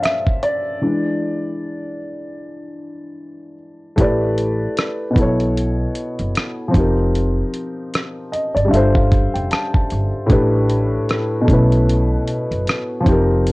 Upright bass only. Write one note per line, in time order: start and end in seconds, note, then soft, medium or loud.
3.98 4.65 A1 loud
5.17 5.83 B1 loud
6.20 6.33 F#1 medium
6.75 7.41 F1 loud
8.56 8.70 G1 medium
8.73 9.25 G1 loud
9.35 9.49 F1 medium
9.92 10.10 G1 medium
10.30 10.97 A1 loud
11.49 12.15 B1 loud
12.51 12.64 F#1 medium
13.07 13.52 F1 loud